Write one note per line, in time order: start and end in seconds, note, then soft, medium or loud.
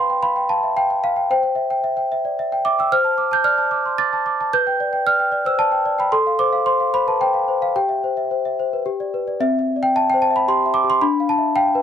0.00 1.27 B4 medium
0.00 0.19 F5 soft
0.00 0.10 G5 soft
0.00 0.23 B5 medium
0.00 0.24 C6 medium
0.10 0.32 G5 medium
0.22 0.45 F5 soft
0.22 0.50 B5 loud
0.36 0.58 G5 medium
0.49 0.72 F5 medium
0.49 0.77 A5 medium
0.63 0.77 E5 soft
0.76 0.99 F5 medium
0.76 0.89 G5 medium
0.90 1.12 G5 medium
1.04 1.31 F5 medium
1.16 1.30 G5 medium
1.31 2.88 C5 medium
1.31 1.42 G5 medium
1.43 1.66 G5 medium
1.55 1.78 E5 medium
1.70 1.93 G5 medium
1.84 2.06 E5 medium
1.97 2.19 G5 medium
2.12 2.33 E5 medium
2.25 2.39 D5 soft
2.39 2.60 E5 medium
2.52 2.74 G5 medium
2.65 2.87 E5 medium
2.65 2.79 D6 loud
2.79 2.92 G5 medium
2.79 2.93 E6 medium
2.92 4.49 C5 medium
2.92 3.32 F6 loud
3.04 3.26 A5 medium
3.18 3.40 D6 medium
3.31 3.53 A5 medium
3.31 3.46 G6 loud
3.44 3.66 D5 medium
3.44 3.98 F6 loud
3.58 3.80 A5 medium
3.71 3.93 D6 medium
3.86 3.99 C6 soft
3.98 4.20 D6 medium
3.98 4.52 A6 loud
4.13 4.34 A5 medium
4.26 4.47 D6 medium
4.41 4.53 A5 medium
4.53 6.09 B4 medium
4.53 5.06 G6 loud
4.67 4.88 G5 medium
4.80 5.01 D5 medium
4.93 5.14 G5 medium
5.06 5.28 D5 medium
5.06 5.46 F6 loud
5.20 5.41 G5 medium
5.32 5.54 D5 medium
5.45 5.59 C5 soft
5.45 5.59 E6 loud
5.59 5.80 D5 medium
5.59 5.99 A5 loud
5.72 5.93 G5 medium
5.86 6.07 D5 medium
5.99 6.12 G5 medium
5.99 6.13 B5 medium
6.12 7.71 A4 medium
6.12 6.39 C6 loud
6.27 6.48 F5 medium
6.39 6.61 C5 medium
6.39 6.66 D6 loud
6.53 6.74 F5 medium
6.66 6.88 C5 medium
6.66 6.93 C6 loud
6.80 7.02 F5 medium
6.94 7.15 C5 medium
6.94 7.07 B5 loud
7.07 7.20 B4 soft
7.07 7.21 A5 medium
7.21 7.42 C5 medium
7.21 7.62 G5 medium
7.34 7.56 F5 medium
7.48 7.70 C5 medium
7.62 7.76 F5 medium
7.76 8.83 G4 medium
7.76 9.14 G5 medium
7.89 8.11 E5 soft
8.04 8.25 C5 soft
8.17 8.39 E5 soft
8.31 8.53 C5 medium
8.45 8.67 E5 medium
8.60 8.81 C5 soft
8.73 8.86 B4 soft
8.86 9.39 G4 medium
9.00 9.22 D5 soft
9.14 9.36 B4 soft
9.28 9.41 D5 medium
9.40 10.99 C4 medium
9.40 9.58 E5 medium
9.59 9.88 E5 soft
9.76 9.95 D5 soft
9.83 9.96 G5 medium
9.96 10.24 E5 medium
9.96 10.09 A5 loud
10.10 10.23 G5 medium
10.14 10.42 C5 medium
10.22 10.35 A5 loud
10.31 10.60 E5 medium
10.36 10.49 B5 medium
10.48 10.77 G4 medium
10.48 10.76 C6 loud
10.66 10.95 E5 medium
10.74 10.88 D6 loud
10.84 11.02 G4 medium
10.90 11.03 C6 loud
11.01 11.82 D4 medium
11.01 11.29 B5 loud
11.20 11.49 F5 medium
11.29 11.56 A5 loud
11.38 11.56 E5 medium
11.56 11.82 F5 medium
11.56 11.82 G5 loud
11.75 11.82 B4 medium